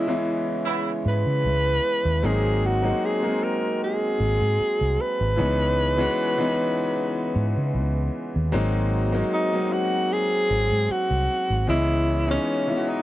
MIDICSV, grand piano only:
0, 0, Header, 1, 2, 480
1, 0, Start_track
1, 0, Tempo, 788436
1, 1359, Time_signature, 4, 2, 24, 8
1, 7927, End_track
2, 0, Start_track
2, 0, Title_t, "Grand piano"
2, 0, Program_c, 0, 0
2, 0, Control_c, 0, 64, 127
2, 0, Note_on_c, 0, 52, 75
2, 0, Note_on_c, 0, 56, 75
2, 0, Note_on_c, 0, 59, 69
2, 0, Note_on_c, 0, 61, 76
2, 0, Note_on_c, 0, 75, 94
2, 46, Note_off_c, 0, 52, 0
2, 46, Note_on_c, 0, 52, 86
2, 48, Note_off_c, 0, 56, 0
2, 48, Note_on_c, 0, 56, 82
2, 53, Note_off_c, 0, 59, 0
2, 53, Note_on_c, 0, 59, 77
2, 56, Note_off_c, 0, 61, 0
2, 56, Note_on_c, 0, 61, 76
2, 61, Note_on_c, 0, 64, 96
2, 922, Note_off_c, 0, 52, 0
2, 923, Note_off_c, 0, 56, 0
2, 926, Note_off_c, 0, 59, 0
2, 928, Note_off_c, 0, 61, 0
2, 930, Note_off_c, 0, 64, 0
2, 1355, Note_on_c, 0, 54, 80
2, 1356, Note_on_c, 0, 56, 71
2, 1362, Note_on_c, 0, 58, 75
2, 1363, Note_on_c, 0, 60, 75
2, 1366, Note_on_c, 0, 63, 92
2, 1367, Control_c, 0, 64, 0
2, 1370, Note_off_c, 0, 75, 0
2, 1457, Control_c, 0, 64, 127
2, 1694, Note_off_c, 0, 54, 0
2, 1695, Note_off_c, 0, 56, 0
2, 1698, Note_off_c, 0, 58, 0
2, 1699, Note_off_c, 0, 60, 0
2, 1700, Note_off_c, 0, 63, 0
2, 1720, Note_on_c, 0, 54, 82
2, 1725, Note_on_c, 0, 56, 68
2, 1727, Note_on_c, 0, 58, 71
2, 1731, Note_on_c, 0, 60, 68
2, 1734, Note_on_c, 0, 63, 83
2, 1943, Note_off_c, 0, 54, 0
2, 1945, Note_off_c, 0, 56, 0
2, 1946, Note_off_c, 0, 58, 0
2, 1948, Note_off_c, 0, 60, 0
2, 1950, Note_off_c, 0, 63, 0
2, 1960, Note_on_c, 0, 54, 70
2, 1964, Note_on_c, 0, 56, 67
2, 1970, Note_on_c, 0, 58, 70
2, 1973, Note_on_c, 0, 60, 60
2, 1975, Note_on_c, 0, 63, 77
2, 2839, Note_off_c, 0, 54, 0
2, 2841, Note_off_c, 0, 56, 0
2, 2844, Note_off_c, 0, 58, 0
2, 2845, Note_off_c, 0, 60, 0
2, 2846, Note_off_c, 0, 63, 0
2, 3265, Note_on_c, 0, 52, 79
2, 3270, Note_on_c, 0, 56, 72
2, 3273, Note_on_c, 0, 59, 72
2, 3275, Note_on_c, 0, 61, 74
2, 3280, Note_on_c, 0, 63, 92
2, 3285, Control_c, 0, 64, 0
2, 3392, Control_c, 0, 64, 127
2, 3609, Note_off_c, 0, 52, 0
2, 3612, Note_off_c, 0, 56, 0
2, 3613, Note_off_c, 0, 59, 0
2, 3614, Note_off_c, 0, 61, 0
2, 3616, Note_off_c, 0, 63, 0
2, 3637, Note_on_c, 0, 52, 93
2, 3642, Note_on_c, 0, 56, 91
2, 3647, Note_on_c, 0, 59, 84
2, 3648, Note_on_c, 0, 61, 85
2, 3654, Note_on_c, 0, 66, 99
2, 3860, Note_off_c, 0, 52, 0
2, 3863, Note_off_c, 0, 56, 0
2, 3866, Note_off_c, 0, 59, 0
2, 3866, Note_off_c, 0, 61, 0
2, 3869, Note_off_c, 0, 66, 0
2, 3881, Note_on_c, 0, 52, 95
2, 3884, Note_on_c, 0, 56, 76
2, 3886, Note_on_c, 0, 59, 83
2, 3893, Note_on_c, 0, 61, 79
2, 3896, Note_on_c, 0, 63, 101
2, 4759, Note_off_c, 0, 52, 0
2, 4760, Note_off_c, 0, 56, 0
2, 4761, Note_off_c, 0, 59, 0
2, 4765, Note_off_c, 0, 61, 0
2, 4766, Note_off_c, 0, 63, 0
2, 5188, Note_on_c, 0, 54, 102
2, 5188, Note_on_c, 0, 56, 83
2, 5194, Note_on_c, 0, 58, 82
2, 5195, Note_on_c, 0, 60, 92
2, 5199, Note_on_c, 0, 63, 104
2, 5205, Control_c, 0, 64, 0
2, 5320, Control_c, 0, 64, 127
2, 5530, Note_off_c, 0, 54, 0
2, 5530, Note_off_c, 0, 56, 0
2, 5533, Note_off_c, 0, 58, 0
2, 5534, Note_off_c, 0, 60, 0
2, 5536, Note_off_c, 0, 63, 0
2, 5553, Note_on_c, 0, 54, 86
2, 5558, Note_on_c, 0, 56, 70
2, 5561, Note_on_c, 0, 58, 69
2, 5568, Note_on_c, 0, 60, 76
2, 5569, Note_on_c, 0, 63, 90
2, 5778, Note_off_c, 0, 54, 0
2, 5781, Note_off_c, 0, 56, 0
2, 5782, Note_off_c, 0, 58, 0
2, 5785, Note_off_c, 0, 60, 0
2, 5786, Note_off_c, 0, 63, 0
2, 5798, Note_on_c, 0, 54, 80
2, 5804, Note_on_c, 0, 56, 70
2, 5806, Note_on_c, 0, 58, 70
2, 5811, Note_on_c, 0, 60, 71
2, 5814, Note_on_c, 0, 63, 78
2, 6677, Note_off_c, 0, 54, 0
2, 6680, Note_off_c, 0, 56, 0
2, 6681, Note_off_c, 0, 58, 0
2, 6683, Note_off_c, 0, 60, 0
2, 6685, Note_off_c, 0, 63, 0
2, 7106, Note_on_c, 0, 52, 86
2, 7109, Note_on_c, 0, 56, 77
2, 7113, Note_on_c, 0, 59, 71
2, 7114, Note_on_c, 0, 61, 80
2, 7118, Note_on_c, 0, 75, 93
2, 7124, Control_c, 0, 64, 0
2, 7230, Control_c, 0, 64, 127
2, 7448, Note_off_c, 0, 52, 0
2, 7450, Note_off_c, 0, 56, 0
2, 7452, Note_off_c, 0, 59, 0
2, 7453, Note_off_c, 0, 61, 0
2, 7455, Note_off_c, 0, 75, 0
2, 7475, Note_on_c, 0, 52, 75
2, 7477, Note_on_c, 0, 56, 74
2, 7480, Note_on_c, 0, 59, 70
2, 7486, Note_on_c, 0, 61, 76
2, 7486, Note_on_c, 0, 63, 88
2, 7699, Note_off_c, 0, 52, 0
2, 7700, Note_off_c, 0, 56, 0
2, 7701, Note_off_c, 0, 59, 0
2, 7704, Note_off_c, 0, 61, 0
2, 7704, Note_off_c, 0, 63, 0
2, 7716, Note_on_c, 0, 52, 70
2, 7719, Note_on_c, 0, 56, 60
2, 7721, Note_on_c, 0, 59, 68
2, 7727, Note_on_c, 0, 61, 63
2, 7729, Note_on_c, 0, 64, 65
2, 7763, Note_off_c, 0, 64, 0
2, 7771, Note_on_c, 0, 66, 80
2, 7927, Note_off_c, 0, 52, 0
2, 7927, Note_off_c, 0, 56, 0
2, 7927, Note_off_c, 0, 59, 0
2, 7927, Note_off_c, 0, 61, 0
2, 7927, Note_off_c, 0, 66, 0
2, 7927, End_track
0, 0, End_of_file